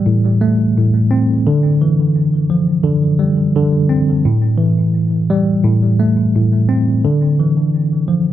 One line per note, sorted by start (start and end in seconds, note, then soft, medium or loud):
0.00 0.06 A2 medium
0.00 1.45 E3 medium
0.00 1.46 G3 medium
0.06 0.76 A2 medium
0.41 1.46 A3 medium
0.78 1.47 A2 medium
1.11 1.46 C4 medium
1.47 2.82 D3 loud
1.81 4.25 E3 medium
2.50 4.25 F3 medium
2.83 3.54 D3 medium
3.19 4.25 G3 medium
3.56 4.25 D3 medium
3.89 4.25 C4 medium
4.25 5.63 A2 medium
4.58 7.03 E3 medium
5.30 7.05 G3 medium
5.64 6.34 A2 medium
6.00 7.04 A3 medium
6.36 7.05 A2 medium
6.69 7.04 C4 medium
7.05 8.33 D3 loud
7.40 8.33 E3 medium
8.08 8.33 F3 medium